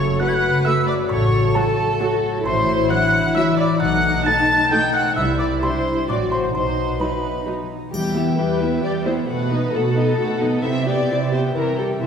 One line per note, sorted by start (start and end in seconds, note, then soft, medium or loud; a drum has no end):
0.00 0.12 F#1 medium
0.00 1.12 F#2 medium
0.00 0.49 C#3 soft
0.00 1.07 A3 medium
0.00 2.41 F#4 medium
0.00 0.19 A4 medium
0.00 0.19 C#5 medium
0.00 0.20 C#5 medium
0.00 0.94 C#5 soft
0.00 0.17 C#6 medium
0.00 0.20 C#6 medium
0.00 0.25 C#6 soft
0.05 0.34 F#4 soft
0.19 0.27 A3 soft
0.19 0.46 E4 soft
0.19 0.27 F#4 medium
0.19 1.10 B4 medium
0.19 0.64 F#5 medium
0.19 0.65 F#5 medium
0.19 0.62 F#6 medium
0.19 0.30 F#6 medium
0.29 0.36 G#6 medium
0.34 0.64 F#4 soft
0.34 0.67 F#6 medium
0.50 1.12 C#3 soft
0.64 0.73 A3 medium
0.64 1.39 F#4 soft
0.64 0.73 F#4 medium
0.64 0.72 E5 medium
0.64 0.73 E5 medium
0.64 0.86 E6 medium
0.64 0.87 E6 medium
0.80 2.15 A3 soft
0.86 0.94 D5 medium
0.86 0.95 D5 medium
0.86 0.94 D6 medium
0.86 1.09 D6 medium
0.95 2.30 C#5 soft
1.09 1.48 A1 medium
1.09 2.45 A2 medium
1.09 3.77 F#3 medium
1.09 1.99 A4 medium
1.09 1.54 C#5 medium
1.09 1.52 C#6 medium
1.09 1.58 C#6 medium
1.25 1.85 F#3 soft
1.41 1.70 F#4 soft
1.55 1.63 F#3 soft
1.55 1.81 E4 soft
1.55 1.63 F#4 medium
1.55 2.45 A4 medium
1.55 2.44 A4 medium
1.55 2.41 A5 medium
1.55 2.17 A5 medium
1.71 2.00 F#4 medium
1.86 3.50 F#3 soft
2.00 2.08 F#3 medium
2.00 2.08 F#4 medium
2.00 2.45 F#4 medium
2.00 5.19 F#4 medium
2.16 4.85 A3 medium
2.31 2.48 C#5 medium
2.45 2.83 A1 medium
2.45 3.83 A2 medium
2.45 3.78 E4 medium
2.45 3.81 E4 medium
2.45 2.90 C5 medium
2.45 2.89 C6 medium
2.45 2.88 C6 medium
2.61 3.20 E3 soft
2.76 3.05 E4 medium
2.90 2.98 F#3 soft
2.90 3.16 D4 soft
2.90 2.98 E4 medium
2.90 3.36 F#5 medium
2.90 3.32 F#6 medium
2.90 3.35 F#6 medium
3.06 3.35 E4 medium
3.21 3.83 E3 medium
3.35 3.43 F#3 medium
3.35 3.44 E4 medium
3.35 3.83 E4 medium
3.35 3.58 E5 medium
3.35 3.44 E5 medium
3.35 3.56 E6 medium
3.35 3.42 E6 medium
3.51 3.95 F#3 medium
3.58 3.80 D5 medium
3.58 3.67 D5 medium
3.58 3.79 D6 medium
3.58 3.80 D6 medium
3.66 5.01 C5 medium
3.80 4.19 B1 medium
3.80 5.19 B2 medium
3.80 4.99 A3 medium
3.80 4.69 D#4 medium
3.80 4.99 D#4 medium
3.80 4.25 F#5 medium
3.80 4.23 F#6 medium
3.80 4.25 F#6 loud
3.96 4.55 F#3 soft
4.11 4.40 D#4 soft
4.25 4.34 A3 medium
4.25 4.52 C4 soft
4.25 4.34 D#4 medium
4.25 4.70 A5 medium
4.25 4.71 A5 medium
4.25 4.70 A6 medium
4.25 4.68 A6 medium
4.41 4.71 D#4 medium
4.57 5.19 F#3 medium
4.71 4.79 A3 medium
4.71 4.79 D#4 medium
4.71 5.16 D#4 medium
4.71 5.19 D#4 medium
4.71 4.79 G5 medium
4.71 4.94 G5 medium
4.71 4.92 G6 medium
4.71 4.93 G6 medium
4.86 5.19 A3 soft
4.93 5.01 F#5 medium
4.93 5.17 F#5 medium
4.93 5.15 F#6 medium
5.02 6.39 C5 medium
5.16 5.54 C2 medium
5.16 6.10 C3 medium
5.16 6.06 G3 medium
5.16 6.08 E4 medium
5.16 6.07 E4 medium
5.16 5.39 E5 medium
5.16 5.22 E6 medium
5.16 5.38 E6 medium
5.33 5.92 C4 soft
5.39 5.47 D5 medium
5.39 5.62 D5 medium
5.39 5.45 D6 medium
5.39 5.61 D6 medium
5.48 5.77 E4 soft
5.62 5.70 G3 soft
5.62 5.89 D4 soft
5.62 5.70 E4 soft
5.62 6.07 C5 medium
5.62 6.07 C6 medium
5.62 6.05 C6 medium
5.78 6.10 E4 soft
5.94 6.57 C4 soft
6.08 6.46 A1 medium
6.08 6.56 A2 medium
6.08 6.16 F#3 soft
6.08 7.71 F#3 medium
6.08 6.16 F#4 soft
6.08 6.54 F#4 soft
6.08 6.55 F#4 medium
6.08 6.17 D5 medium
6.08 6.31 D5 medium
6.08 6.15 D6 medium
6.08 6.31 D6 medium
6.24 7.62 F#3 soft
6.31 6.39 C5 medium
6.31 6.54 C5 medium
6.31 6.37 C6 medium
6.31 6.53 C6 medium
6.39 6.85 F#4 soft
6.39 6.57 C5 soft
6.54 6.93 B1 medium
6.54 7.95 B2 soft
6.54 7.68 D#4 soft
6.54 7.00 C5 medium
6.54 7.01 C6 medium
6.54 6.98 C6 medium
6.70 7.31 B3 soft
6.86 7.16 F#4 soft
7.00 7.08 F#3 soft
7.00 7.08 D#4 soft
7.00 7.28 E4 soft
7.00 7.47 B4 soft
7.00 7.46 B4 soft
7.00 7.47 B5 medium
7.00 7.44 B5 soft
7.17 7.46 F#4 soft
7.32 9.40 B3 soft
7.46 7.54 F#3 soft
7.46 7.54 D#4 soft
7.46 7.95 F#4 soft
7.63 7.95 F#3 soft
7.79 7.95 D#5 soft
7.92 8.33 E2 medium
7.92 9.31 E3 medium
7.92 8.14 G3 soft
7.92 8.14 G4 soft
7.92 8.35 G4 medium
7.92 8.14 G5 soft
7.92 triangle soft
8.06 9.07 E4 soft
8.15 8.38 B3 soft
8.15 8.38 E4 soft
8.15 8.96 B4 soft
8.15 8.39 E5 soft
8.28 8.84 G4 soft
8.38 8.79 E2 medium
8.38 8.61 G3 soft
8.38 8.61 G4 soft
8.38 8.83 B4 medium
8.38 8.73 E5 soft
8.38 8.62 G5 soft
8.51 9.96 B5 soft
8.61 8.84 B3 soft
8.61 8.84 E4 soft
8.61 8.84 E5 soft
8.61 9.31 G5 soft
8.74 9.31 E5 soft
8.84 9.24 E2 soft
8.84 9.05 G3 soft
8.84 9.05 G4 soft
8.84 9.32 G4 soft
8.84 8.92 D5 medium
8.84 9.05 G5 soft
8.97 9.62 B4 soft
9.05 9.29 B3 soft
9.05 9.28 E4 soft
9.05 9.32 E4 soft
9.05 9.14 C5 medium
9.05 9.28 E5 soft
9.19 9.32 G3 soft
9.28 9.69 B2 medium
9.28 10.67 B2 medium
9.28 9.50 A3 medium
9.28 9.50 F#4 soft
9.28 9.73 B4 medium
9.28 9.50 F#5 soft
9.41 10.30 B3 soft
9.51 9.74 B3 soft
9.51 9.74 D#4 soft
9.51 9.74 D#5 medium
9.64 10.07 B4 soft
9.73 10.14 B2 medium
9.73 9.97 A3 soft
9.73 10.19 D#4 medium
9.73 9.97 F#4 soft
9.73 10.64 A4 medium
9.73 9.97 F#5 medium
9.86 10.67 D#5 soft
9.96 10.19 B3 soft
9.96 10.19 D#4 medium
9.96 10.20 D#5 soft
9.96 11.57 B5 medium
10.09 11.09 B4 medium
10.19 10.59 B2 medium
10.19 10.40 A3 medium
10.19 10.67 D#4 soft
10.19 10.40 F#4 medium
10.19 10.41 F#5 medium
10.31 10.53 B3 soft
10.41 10.67 F#3 soft
10.41 10.64 B3 soft
10.41 10.64 D#4 soft
10.41 10.64 D#5 soft
10.54 10.75 B3 soft
10.64 11.04 C3 medium
10.64 11.54 C3 medium
10.64 10.85 C4 soft
10.64 10.85 E4 medium
10.64 10.87 E5 medium
10.64 10.85 E5 medium
10.77 11.57 B3 soft
10.86 11.09 B3 soft
10.86 11.76 E4 soft
10.86 11.09 G4 soft
10.86 11.31 D5 medium
10.86 11.09 G5 soft
10.99 11.88 G4 soft
11.09 11.50 C3 medium
11.09 11.32 C4 soft
11.09 11.32 E4 soft
11.09 11.43 B4 soft
11.09 11.32 E5 soft
11.21 12.07 E5 soft
11.32 11.55 B3 soft
11.32 11.55 G4 soft
11.32 11.41 C5 medium
11.32 11.55 G5 soft
11.32 12.07 G5 soft
11.44 11.57 B4 soft
11.55 11.96 C3 medium
11.55 12.03 C3 medium
11.55 11.77 E3 soft
11.55 11.77 E4 soft
11.55 11.78 A#4 medium
11.55 11.77 E5 soft
11.66 12.07 G3 soft
11.78 12.01 G3 soft
11.78 12.07 E4 soft
11.78 12.01 G4 soft
11.78 11.87 A4 medium
11.78 12.01 G5 soft
11.89 12.07 G4 soft
12.01 12.07 B2 medium
12.01 12.07 B2 soft
12.01 12.07 E3 soft
12.01 12.07 E4 soft
12.01 12.07 C5 medium
12.01 12.07 E5 soft